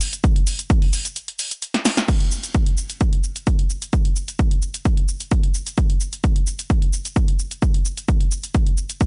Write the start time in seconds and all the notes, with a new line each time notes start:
0.01 open hi-hat, shaker
0.13 closed hi-hat, shaker
0.24 kick, closed hi-hat, shaker
0.36 closed hi-hat
0.47 open hi-hat, shaker
0.59 closed hi-hat, shaker
0.70 kick, closed hi-hat, shaker
0.82 open hi-hat
0.93 open hi-hat, shaker
1.05 closed hi-hat, shaker
1.16 closed hi-hat, shaker
1.28 closed hi-hat
1.39 open hi-hat, shaker
1.51 closed hi-hat, shaker
1.62 closed hi-hat, shaker
1.74 snare, closed hi-hat
1.85 snare, open hi-hat, shaker
1.97 snare, closed hi-hat, shaker
2.08 kick, closed hi-hat, crash, shaker
2.20 closed hi-hat
2.31 shaker
2.43 closed hi-hat, shaker
2.54 kick, closed hi-hat, shaker
2.66 closed hi-hat
2.77 shaker
2.90 closed hi-hat, shaker
3.01 kick, closed hi-hat, shaker
3.13 closed hi-hat
3.24 shaker
3.36 closed hi-hat, shaker
3.47 kick, closed hi-hat, shaker
3.59 closed hi-hat
3.70 shaker
3.82 closed hi-hat, shaker
3.93 kick, closed hi-hat, shaker
4.05 closed hi-hat
4.16 shaker
4.28 closed hi-hat, shaker
4.39 kick, closed hi-hat, shaker
4.51 closed hi-hat
4.62 shaker
4.74 closed hi-hat, shaker
4.85 kick, closed hi-hat, shaker
4.97 closed hi-hat
5.08 shaker
5.20 closed hi-hat, shaker
5.31 kick, closed hi-hat, shaker
5.43 closed hi-hat
5.54 shaker
5.67 closed hi-hat, shaker
5.78 kick, closed hi-hat, shaker
5.90 closed hi-hat
6.01 shaker
6.13 closed hi-hat, shaker
6.24 kick, closed hi-hat, shaker
6.36 closed hi-hat
6.47 shaker
6.59 closed hi-hat, shaker
6.70 kick, closed hi-hat, shaker
6.82 closed hi-hat
6.93 shaker
7.05 closed hi-hat, shaker
7.16 kick, closed hi-hat, shaker
7.28 closed hi-hat
7.39 shaker
7.51 closed hi-hat, shaker
7.62 kick, closed hi-hat, shaker
7.74 closed hi-hat
7.85 shaker
7.97 closed hi-hat, shaker
8.08 kick, closed hi-hat, shaker
8.21 closed hi-hat
8.31 shaker
8.44 closed hi-hat, shaker
8.54 kick, closed hi-hat, shaker
8.67 closed hi-hat
8.78 shaker
8.90 closed hi-hat, shaker
9.01 kick, closed hi-hat, shaker